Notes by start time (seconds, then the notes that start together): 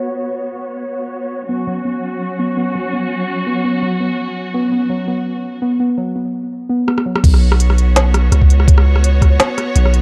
Already playing: B3 F#4 C#5
1.49 F#3 B3 C#4 F#4
1.67 F#3
1.85 B3
2.39 B3
2.57 B3
2.75 F#3
2.93 B3
3.47 B3
3.64 B3
3.82 F#3
4.00 B3
4.54 B3
4.72 B3
4.90 F#3
5.08 B3
5.62 B3
5.80 B3
5.98 F#3
6.16 B3
6.69 B3
6.88 B3, cross-stick
6.98 cross-stick
7.06 F#3
7.16 cross-stick
7.24 B1 B3 F#4 C#5, kick, closed hi-hat, crash
7.34 cross-stick
7.52 cross-stick
7.60 closed hi-hat
7.70 cross-stick
7.78 closed hi-hat
7.96 cross-stick, snare, closed hi-hat
8.14 cross-stick, closed hi-hat
8.32 C#2, cross-stick, closed hi-hat
8.42 kick
8.50 closed hi-hat
8.60 cross-stick
8.68 kick, closed hi-hat
8.78 cross-stick
8.96 cross-stick
9.04 closed hi-hat
9.22 kick, cross-stick, closed hi-hat
9.40 cross-stick, snare, closed hi-hat
9.58 cross-stick, closed hi-hat
9.76 B1, closed hi-hat
9.85 cross-stick
9.94 closed hi-hat